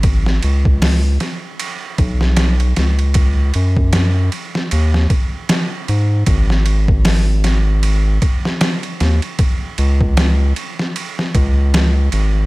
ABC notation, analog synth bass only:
X:1
M:4/4
L:1/8
Q:"Swing 16ths" 1/4=77
K:G#phr
V:1 name="Analog synth bass" clef=bass
G,,, C,,2 z2 B,,,2 C,,- | C,, F,,2 z D,, z2 G,, | G,,,4- G,,, z2 D,, | z C,,2 z2 C,,2 G,,, |]